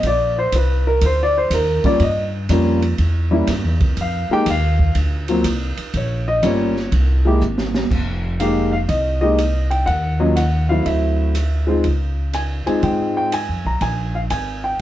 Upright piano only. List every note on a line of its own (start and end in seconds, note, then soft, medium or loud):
0.07 0.37 D5 medium
0.39 0.53 C5 medium
0.56 0.87 B4 medium
0.87 1.02 A#4 medium
1.06 1.20 C5 medium
1.23 1.37 D5 medium
1.38 1.52 C5 medium
1.54 1.85 A#4 medium
1.85 1.99 G3 medium
1.85 1.99 A#3 medium
1.85 2.00 C#4 medium
1.85 2.00 F4 medium
1.85 2.01 D5 medium
2.02 2.22 D#5 medium
2.50 2.80 G3 medium
2.50 2.80 A#3 medium
2.50 2.80 C#4 medium
2.50 2.80 F4 medium
3.31 3.46 G3 medium
3.31 3.46 A#3 medium
3.31 3.47 C#4 medium
3.31 3.47 E4 medium
4.01 4.31 F5 medium
4.31 4.45 G#3 medium
4.31 4.45 A#3 medium
4.31 4.46 D#4 medium
4.31 4.46 G4 medium
4.31 4.47 G5 loud
4.50 4.94 F5 medium
5.29 5.43 F#3 medium
5.29 5.44 A#3 medium
5.29 5.44 C4 medium
5.29 5.44 F4 medium
5.97 6.28 C#5 medium
6.28 6.43 D#5 medium
6.43 6.73 G3 medium
6.43 6.73 A#3 medium
6.43 6.74 C#4 medium
6.43 6.74 F4 medium
6.43 6.90 C#5 medium
7.25 7.40 G#3 medium
7.25 7.40 A#3 medium
7.25 7.41 E4 medium
7.25 7.41 G4 medium
8.40 8.70 G#3 medium
8.40 8.70 A#3 medium
8.40 8.71 D#4 medium
8.40 8.71 G4 medium
8.40 8.71 F5 medium
8.72 8.77 F5 medium
8.89 9.20 D#5 medium
9.21 9.37 G#3 medium
9.21 9.37 A#3 medium
9.21 9.37 D#4 medium
9.21 9.37 G4 medium
9.21 9.68 D#5 medium
9.71 9.86 G5 medium
9.86 10.21 F#5 medium
10.20 10.35 F#3 medium
10.20 10.35 A#3 medium
10.20 10.36 C#4 medium
10.20 10.36 F4 medium
10.20 10.36 D#5 medium
10.36 10.68 F#5 medium
10.69 11.32 F#3 medium
10.69 11.33 A3 soft
10.69 11.33 C4 soft
10.69 11.33 E4 medium
10.69 10.85 F5 medium
10.86 11.65 E5 medium
11.67 11.82 G#3 medium
11.67 11.83 C4 medium
11.67 11.83 D#4 medium
11.67 11.83 F4 medium
12.34 12.42 G#5 medium
12.66 13.29 G#3 medium
12.66 13.29 C4 medium
12.66 13.30 D#4 medium
12.66 13.30 F4 medium
12.66 12.84 G#5 medium
12.84 13.14 G5 medium
13.17 13.32 G5 medium
13.34 13.67 G#5 medium
13.67 13.83 A#5 medium
13.82 14.16 G#5 medium
14.15 14.20 F5 medium
14.31 14.62 G#5 medium
14.64 14.81 G5 medium